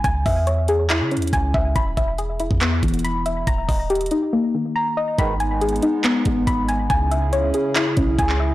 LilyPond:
<<
  \new Staff \with { instrumentName = "Synth pluck" } { \time 4/4 \key gis \minor \tempo 4 = 140 gis''8 e''8 cis''8 gis'8 e'8 cis'8 gis''8 e''8 | b''8 e''8 gis'8 e'8 b8 e8 b''8 e''8 | ais''8 dis''8 g'8 dis'8 ais8 dis8 ais''8 dis''8 | b''8 gis''8 gis'8 dis'8 b8 gis8 b''8 gis''8 |
gis''8 e''8 cis''8 gis'8 e'8 cis'8 gis''8 e''8 | }
  \new Staff \with { instrumentName = "Analog synth pad" } { \time 4/4 \key gis \minor r1 | r1 | r1 | <gis b dis'>1 |
<cis cis' e' gis'>1 | }
  \new Staff \with { instrumentName = "Brass ensemble" } { \clef bass \time 4/4 \key gis \minor r1 | r1 | r1 | <gis, b, dis>8 r2. r8 |
r1 | }
  \new Staff \with { instrumentName = "808-style bass" } { \clef bass \time 4/4 \key gis \minor cis,8 e,4.~ e,16 cis16. e,16. cis,8 cis,8 | e,,8 e,,4~ e,,16 e,8. e,,4. | dis,,8 dis,,4 r2 r8 | gis,,4. r4 gis,,8 gis,,4 |
cis,4. r4 b,,8 cis,4 | }
  \new DrumStaff \with { instrumentName = "Drums" } \drummode { \time 4/4 <hh bd>8 <hho bd>8 hh8 hh8 <hc hh>8 hh32 hh32 hh32 hh32 <hh bd>8 bd8 | <hh bd>8 <hh bd>8 hh8 hh16 bd16 <hc hh>8 <hh bd>32 hh32 hh32 hh32 hh8 hh8 | <hh bd>8 <hho bd>8 hh32 hh32 hh32 hh32 hh8 r4 r4 | <hh bd>8 hh8 \tuplet 3/2 { hh16 hh16 hh16 hh16 r16 r16 } <hc hh>8 <hh bd>8 <hh bd>8 hh8 |
<hh bd>8 hh8 hh8 hh8 <hc hh>8 <hh bd>8 <hh bd>16 hc8. | }
>>